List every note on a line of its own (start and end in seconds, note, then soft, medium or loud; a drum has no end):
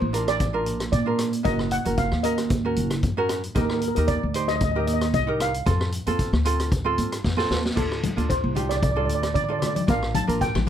0.00 0.66 A1 medium
0.00 0.29 C5 medium
0.13 0.38 D4 medium
0.13 0.37 F4 medium
0.13 0.38 A#4 medium
0.13 closed hi-hat medium
0.28 0.91 D5 medium
0.28 cross-stick medium
0.28 closed hi-hat medium
0.40 kick medium
0.40 closed hi-hat medium
0.53 0.85 D4 medium
0.53 0.85 F4 medium
0.53 0.85 A#4 medium
0.66 0.89 A#1 medium
0.66 closed hi-hat medium
0.80 cross-stick medium
0.80 closed hi-hat medium
0.92 1.38 A#2 medium
0.92 1.47 D5 medium
0.92 kick medium
0.92 closed hi-hat medium
1.06 1.30 D4 medium
1.06 1.30 F4 medium
1.06 1.30 A#4 medium
1.19 cross-stick medium
1.19 closed hi-hat medium
1.33 closed hi-hat medium
1.43 1.80 F#1 medium
1.43 1.68 C#4 medium
1.43 1.69 F#4 medium
1.43 1.69 A#4 medium
1.43 1.72 D#5 medium
1.43 kick medium
1.43 closed hi-hat medium
1.59 cross-stick medium
1.71 1.99 F#5 medium
1.71 closed hi-hat medium
1.85 2.09 F#1 medium
1.85 2.09 C#4 medium
1.85 2.09 F#4 medium
1.85 2.09 A#4 medium
1.85 closed hi-hat medium
1.97 2.22 F5 medium
1.97 kick medium
1.97 closed hi-hat medium
2.12 2.78 D#2 medium
2.12 cross-stick medium
2.23 2.48 C#4 medium
2.23 2.48 F#4 soft
2.23 2.48 A#4 medium
2.23 2.73 D#5 medium
2.23 closed hi-hat medium
2.38 cross-stick medium
2.38 closed hi-hat soft
2.50 kick medium
2.50 closed hi-hat medium
2.65 2.96 C#4 medium
2.65 2.96 F#4 soft
2.65 2.96 A#4 medium
2.76 3.00 F#1 medium
2.76 closed hi-hat medium
2.90 cross-stick medium
2.90 closed hi-hat soft
3.03 3.49 F#2 medium
3.03 kick medium
3.03 closed hi-hat soft
3.17 3.41 C#4 medium
3.17 3.41 F#4 medium
3.17 3.41 A#4 medium
3.29 cross-stick medium
3.29 closed hi-hat medium
3.44 closed hi-hat medium
3.55 3.91 D#2 medium
3.55 3.79 D#4 medium
3.55 3.80 G4 medium
3.55 3.80 A#4 medium
3.55 3.64 A#4 medium
3.55 kick medium
3.55 closed hi-hat medium
3.65 3.73 A#4 soft
3.70 cross-stick medium
3.74 3.79 A#4 medium
3.81 3.87 A#4 soft
3.81 closed hi-hat medium
3.88 3.94 A#4 medium
3.95 4.20 D#2 medium
3.95 4.20 D#4 medium
3.95 4.20 G4 medium
3.95 4.02 A#4 soft
3.95 4.21 A#4 medium
3.95 closed hi-hat medium
4.08 4.50 D5 medium
4.08 kick medium
4.08 closed hi-hat medium
4.23 4.88 D2 medium
4.34 4.58 D#4 medium
4.34 4.59 G4 medium
4.34 4.59 C5 medium
4.34 closed hi-hat medium
4.48 4.55 D#5 medium
4.48 cross-stick medium
4.48 closed hi-hat medium
4.56 4.63 D#5 medium
4.61 4.70 D#5 medium
4.61 kick loud
4.61 closed hi-hat medium
4.71 5.07 D#4 medium
4.71 4.78 D#5 medium
4.76 5.07 G4 medium
4.76 5.07 A#4 medium
4.76 4.86 D#5 medium
4.87 5.10 D#2 medium
4.87 4.92 D#5 medium
4.87 closed hi-hat medium
4.94 5.01 D#5 medium
5.01 5.09 D#5 medium
5.01 cross-stick medium
5.01 closed hi-hat medium
5.14 5.59 C2 medium
5.14 5.41 D#5 medium
5.14 kick medium
5.14 closed hi-hat medium
5.27 5.51 D#4 medium
5.27 5.51 G4 medium
5.27 5.52 A#4 medium
5.40 6.42 F5 medium
5.40 cross-stick medium
5.40 closed hi-hat medium
5.54 closed hi-hat medium
5.66 6.02 F2 medium
5.66 5.90 C4 medium
5.66 5.90 F4 soft
5.66 5.90 A4 medium
5.66 kick loud
5.66 closed hi-hat medium
5.81 cross-stick medium
5.92 closed hi-hat medium
6.07 6.30 F2 medium
6.07 6.30 C4 medium
6.07 6.31 F4 medium
6.07 6.31 A4 medium
6.07 closed hi-hat medium
6.19 kick medium
6.19 closed hi-hat medium
6.33 6.98 D2 medium
6.33 cross-stick medium
6.45 6.69 C4 medium
6.45 6.70 F4 medium
6.45 6.70 A4 medium
6.45 closed hi-hat medium
6.60 cross-stick medium
6.60 closed hi-hat medium
6.72 kick medium
6.72 closed hi-hat medium
6.84 7.16 C4 medium
6.84 7.17 F4 medium
6.84 7.17 A4 medium
6.98 7.22 G2 medium
6.98 closed hi-hat medium
7.12 cross-stick medium
7.12 closed hi-hat medium
7.24 7.48 F2 medium
7.24 kick medium
7.24 snare soft
7.37 7.61 C4 medium
7.37 7.61 F4 medium
7.37 7.62 A4 medium
7.37 snare soft
7.51 7.74 D#2 medium
7.51 snare medium
7.66 snare medium
7.75 8.12 D2 medium
7.75 8.00 D4 medium
7.75 8.00 F4 soft
7.75 8.01 A4 medium
7.75 8.26 A4 medium
7.75 kick loud
7.75 closed hi-hat soft
7.75 crash medium
7.92 cross-stick medium
8.03 closed hi-hat medium
8.03 high conga medium
8.03 low conga medium
8.16 8.40 D2 medium
8.16 8.41 D4 medium
8.16 8.41 F4 medium
8.16 8.41 A4 medium
8.16 closed hi-hat medium
8.30 8.67 C5 medium
8.30 kick medium
8.30 closed hi-hat medium
8.44 9.09 C2 medium
8.55 8.79 D4 medium
8.55 8.80 F4 soft
8.55 8.80 G4 medium
8.55 closed hi-hat medium
8.55 low conga medium
8.69 8.75 D5 medium
8.69 cross-stick medium
8.69 closed hi-hat medium
8.77 8.82 D5 medium
8.83 8.90 D5 medium
8.83 kick medium
8.83 closed hi-hat medium
8.91 8.97 D5 medium
8.96 9.27 D4 medium
8.96 9.28 F4 soft
8.96 9.28 A4 medium
8.96 9.04 D5 medium
9.05 9.32 D2 medium
9.05 9.13 D5 medium
9.09 closed hi-hat medium
9.15 9.22 D5 medium
9.23 9.29 D5 medium
9.23 cross-stick medium
9.23 closed hi-hat medium
9.34 9.81 D3 medium
9.34 9.43 D5 medium
9.34 kick medium
9.34 closed hi-hat medium
9.44 9.51 D5 medium
9.48 9.72 D4 medium
9.48 9.72 F4 soft
9.48 9.73 A4 medium
9.48 9.58 D5 medium
9.59 9.65 D5 medium
9.59 cross-stick medium
9.59 closed hi-hat medium
9.59 low conga medium
9.66 9.74 D5 medium
9.75 9.82 D5 medium
9.75 closed hi-hat medium
9.75 high conga medium
9.87 10.23 A#1 medium
9.87 10.11 D4 medium
9.87 10.12 F4 medium
9.87 10.12 A#4 medium
9.87 10.16 F5 medium
9.87 kick medium
9.87 closed hi-hat medium
10.02 cross-stick medium
10.15 10.39 A5 medium
10.15 closed hi-hat medium
10.15 high conga medium
10.15 low conga medium
10.27 10.51 A#1 medium
10.27 10.51 D4 medium
10.27 10.52 F4 soft
10.27 10.52 A#4 medium
10.27 closed hi-hat medium
10.41 10.68 G5 medium
10.41 kick medium
10.41 closed hi-hat medium
10.55 10.69 A1 medium
10.55 cross-stick medium
10.55 high conga medium